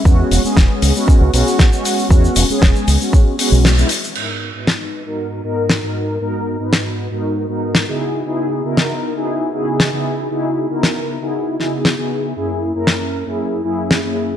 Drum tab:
CC |----------------|----------------|x---------------|----------------|
HH |--o---o---o---o-|--o---o---o---o-|----------------|----------------|
SH |x-xxx-xxx-xxxxxx|xxxxxxxxx-xxxxxx|----------------|----------------|
SD |----o-------o---|----o-------o---|----o-------o---|----o-------o---|
BD |o---o---o---o---|o---o---o-------|----------------|----------------|

CC |----------------|----------------|----------------|
HH |----------------|----------------|----------------|
SH |----------------|----------------|----------------|
SD |----o-------o---|----o-----o-o---|----o-------o---|
BD |----------------|----------------|----------------|